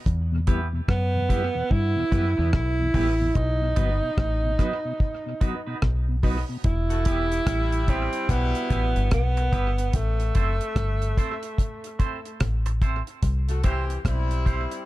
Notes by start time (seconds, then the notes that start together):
0.06 E2, kick, hi-hat pedal
0.32 E2 B2
0.47 G3 B3 E4 G4 B4, kick, closed hi-hat
0.73 E2 B2
0.88 F#2 B3, kick, cross-stick
1.14 E2 B2
1.29 G3 B3 E4 G4 B4, kick, closed hi-hat
1.55 E2 B2
1.71 G2 E4, kick
1.96 E2 B2
2.11 F#2 G3 B3 E4 G4 B4, kick, closed hi-hat
2.37 E2 B2 B3 E4 G4 B4
2.53 B1 E4, kick, cross-stick
2.79 E2 B2
2.94 A1 G3 B3 E4 G4 B4, kick, open hi-hat
3.20 E2 B2
3.35 B1 D#4, kick, hi-hat pedal
3.62 B2
3.76 G1 F#3 B3 D#4 F#4 B4, kick, closed hi-hat
4.03 B2
4.18 A1, kick, cross-stick
4.44 B2
4.59 F#3 B3 D#4 F#4 B4, kick, cross-stick, closed hi-hat
4.85 B2
5.00 kick
5.26 B2
5.41 F#3 B3 D#4 F#4 B4, kick, closed hi-hat
5.67 B2 B3 D#4 F#4 B4
5.82 B1, kick, cross-stick
6.08 B2
6.23 F#3 B3 D#4 F#4 B4, kick, open hi-hat
6.49 B2
6.64 E1 E4, kick, closed hi-hat
6.90 A3 F#4 A4, closed hi-hat
7.05 E3 B3 E4 G4 B4, kick, closed hi-hat
7.32 closed hi-hat
7.46 A1 G3 E4, kick, cross-stick, closed hi-hat
7.72 closed hi-hat
7.88 B3 C4 E4 G4 B4, kick, closed hi-hat
8.13 closed hi-hat
8.28 B1 B2 G3 B3 E4, kick, closed hi-hat
8.55 closed hi-hat
8.70 A1 B3 E4 G4 B4, kick, closed hi-hat
8.96 G1, muted clean electric guitar stroke, closed hi-hat
9.11 B1 B3, kick, cross-stick, closed hi-hat
9.37 muted clean electric guitar stroke, closed hi-hat
9.52 G1 B3 E4 G4 B4, kick, closed hi-hat
9.78 closed hi-hat
9.93 A1 A3, kick, closed hi-hat
10.20 closed hi-hat
10.35 F#1 C4 E4 A4 C5, kick, closed hi-hat
10.61 closed hi-hat
10.76 G1, kick, cross-stick, closed hi-hat
11.02 closed hi-hat
11.17 C4 E4 A4 C5, kick, closed hi-hat
11.43 closed hi-hat
11.58 kick, closed hi-hat
11.84 closed hi-hat
11.99 C4 E4 A4 C5, kick, closed hi-hat
12.25 muted clean electric guitar stroke, closed hi-hat
12.40 A1, kick, cross-stick, closed hi-hat
12.66 muted clean electric guitar stroke, closed hi-hat
12.82 C4 E4 A4 C5, kick, closed hi-hat
13.07 closed hi-hat
13.23 C2, kick, closed hi-hat
13.48 A3 F#4 A4, closed hi-hat
13.63 E3 C4 E4 G4 C5, kick, closed hi-hat
13.90 closed hi-hat
14.04 B1 G3 C4 E4, kick, cross-stick, closed hi-hat
14.31 closed hi-hat
14.46 C4 E4 G4 C5, kick, closed hi-hat
14.71 closed hi-hat